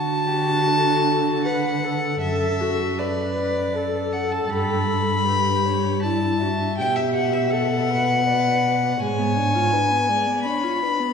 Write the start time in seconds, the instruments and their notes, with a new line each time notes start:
Already playing: cello D3, violin F#4 A5, viola F#4
0.27 violin G4
0.67 violin A4
1.45 violin B4 F#5, viola B4
1.83 violin A4, viola A4
2.21 cello F#2, viola A4, violin E5
2.61 viola F#4
2.97 violin A4 D5, viola B4
3.35 violin B4
3.73 violin A4, viola A4
4.13 violin F#5
4.32 violin A5
4.49 cello G2, violin G4 B5
4.89 violin A4
5.26 viola G4, violin B4
5.65 violin C#5
6.03 viola E4, violin D5 A5
6.41 viola F#4, violin E5
6.78 cello B2, viola G4, violin G5
6.96 violin E5
7.14 violin F#5
7.33 violin E5
7.50 viola A4, violin F#5
7.90 viola B4
8.26 viola B4, violin D5
8.99 cello G#2, viola G#3, violin C#5 G#5
9.19 viola B3
9.36 viola D4
9.54 viola F4
9.72 viola D4, violin B4
9.91 viola B3
10.08 viola G#3, violin D5
10.26 viola B3
10.43 viola D4, violin C#5 B5
10.63 viola F4
10.81 viola D4, violin B4
10.99 viola B3